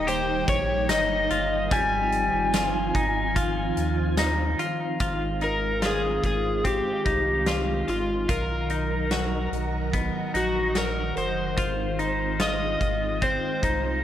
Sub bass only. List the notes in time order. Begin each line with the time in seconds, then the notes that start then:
Already playing: D#1
0.48 A#1
0.90 G1
1.30 G1
1.71 G#1
2.33 G1
2.95 G#1
3.77 D#2
5.01 G#1
6.24 G#1
7.06 C2
7.88 G#1
8.29 B1
9.52 B1
10.34 A#1
11.16 F#1
11.58 G#1
12.81 G#1
13.63 C2